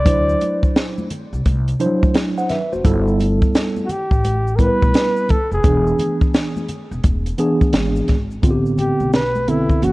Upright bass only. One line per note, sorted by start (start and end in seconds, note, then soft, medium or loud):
0.06 0.33 D2 medium
1.33 1.42 C2 medium
1.46 1.73 C2 loud
2.73 2.82 F#1 medium
2.85 3.39 G1 loud
4.11 4.66 A1 medium
4.82 4.92 B1 medium
5.51 5.61 F1 medium
5.64 5.91 E1 medium
6.91 7.01 E1 medium
7.04 7.31 E1 medium
7.73 8.00 G#1 medium
8.09 8.36 G#1 medium
8.43 8.88 A1 medium
9.00 9.78 B1 medium
9.82 9.92 F#1 loud